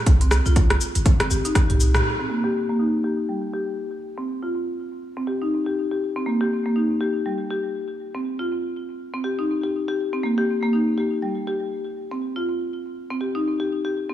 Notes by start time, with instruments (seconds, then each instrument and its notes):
0.06 808-style bass C2, kick, closed hi-hat, cabasa
0.21 marimba C4, closed hi-hat
0.31 cross-stick, cabasa
0.46 808-style bass C2, marimba F4, cabasa
0.56 kick, closed hi-hat, cabasa
0.70 cross-stick, closed hi-hat
0.81 cabasa
0.95 808-style bass G1, closed hi-hat, cabasa
1.06 kick, closed hi-hat, cabasa
1.20 marimba C4, cross-stick, closed hi-hat
1.30 808-style bass G1, marimba G4, cabasa
1.45 marimba D#4, closed hi-hat, cabasa
1.55 kick, cross-stick, closed hi-hat, cabasa
1.70 808-style bass C2, marimba G4, closed hi-hat, mid tom
1.80 cabasa
1.95 marimba G4, cross-stick, mid tom, cabasa
2.19 marimba C4
2.30 marimba A#3
2.44 marimba G4
2.69 marimba A#3
2.79 marimba D#4
3.04 marimba G4
3.29 marimba G3
3.54 marimba G4
4.18 marimba C4
4.43 marimba F4
5.17 marimba C4
5.27 marimba G4
5.42 marimba D#4
5.66 marimba G4
5.91 marimba G4
6.16 marimba C4
6.26 marimba A#3
6.41 marimba G4
6.66 marimba A#3
6.76 marimba D#4
7.01 marimba G4
7.26 marimba G3
7.50 marimba G4
8.15 marimba C4
8.39 marimba F4
9.14 marimba C4
9.24 marimba G4
9.39 marimba D#4
9.63 marimba G4
9.88 marimba G4
10.13 marimba C4
10.23 marimba A#3
10.38 marimba G4
10.63 marimba A#3
10.73 marimba D#4
10.98 marimba G4
11.22 marimba G3
11.47 marimba G4
12.11 marimba C4
12.36 marimba F4
13.10 marimba C4
13.21 marimba G4
13.35 marimba D#4
13.60 marimba G4
13.85 marimba G4
14.09 marimba C4